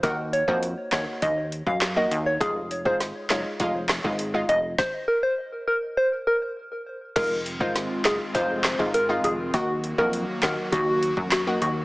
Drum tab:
CC |----------------|----------------|----------------|x---------------|
HH |x-x-x-x-x-x-x-x-|x-x-x-x-x-x-x-x-|----------------|x-x-x-x-x-x-x-x-|
CP |------x-----x---|------x---x-----|----------------|------x---x-----|
SD |------o-----o---|----o-o---o-----|o---------------|----o-o---o-----|
BD |o--o--o-o--o----|o--o----o--o----|o---------------|o--o----o--o----|

CC |----------------|
HH |x-x-x-x-x-x-x-x-|
CP |------x-----x---|
SD |------o-----o---|
BD |o--o--o-o--o----|